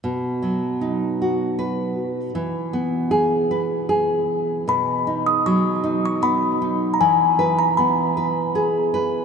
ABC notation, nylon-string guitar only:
X:1
M:3/4
L:1/8
Q:1/4=78
K:B
V:1 name="Nylon-string guitar"
B,, F, D F B2 | E, B, G B G2 | B,, D F, D B, D | E, B B, B G B |]